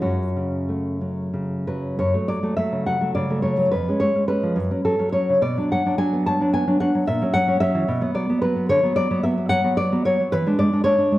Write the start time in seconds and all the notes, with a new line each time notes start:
0.02 F#2 C#4 F#4
0.36 C#3
0.68 A3
1.01 F#3
1.33 C#3
1.67 F#3 B4
1.99 F#2 C#5
2.14 F#3 A3
2.28 F#3 D5
2.43 F#3 A3
2.57 F#3 A3 E5
2.72 C#3
2.86 F#3 F#5
3.01 F#3 A3
3.15 C#3 D5
3.30 F#3 A3
3.42 F#3 A3 C#5
3.58 F#3
3.71 F2 B4
3.88 G#3 C#4
4.00 G#3 C#5
4.15 G#3 C#4
4.28 G#3 C#4 B4
4.43 F3
4.56 F#2
4.71 F#3 C#4
4.85 F#3 A4
4.99 F#3 C#4
5.12 F#3 C#4 C#5
5.29 C#3
5.42 B2 D5
5.57 F#3 D4
5.72 F#3 F#5
5.86 F#3 D4
5.98 F#3 D4 G#5
6.13 B3
6.26 F#3 A5
6.41 F#3 D4
6.53 B3 G#5
6.67 F#3 D4
6.80 F#3 D4 F#5
6.95 F#3
7.07 A#2 E5
7.22 F#3 C#4
7.34 F#3 F#5
7.48 F#3 C#4
7.60 F#3 C#4 E5
7.75 E3
7.88 B2
8.01 F#3 B3
8.14 F#3 D5
8.29 F#3 B3
8.42 F#3 B3 B4
8.56 B3
8.69 D3 C#5
8.83 F#3 B3
8.96 F#3 D5
9.11 F#3 B3
9.23 F#3 B3 E5
9.38 B3
9.49 F#3 F#5
9.64 F#3 B3
9.77 B3 D5
9.92 F#3 B3
10.05 F#3 B3 C#5
10.20 F#3
10.32 E3 B4
10.46 G#3 D4
10.59 G#3 D5
10.73 G#3 D4
10.84 G#3 D4 C#5
10.98 D4
11.12 G#3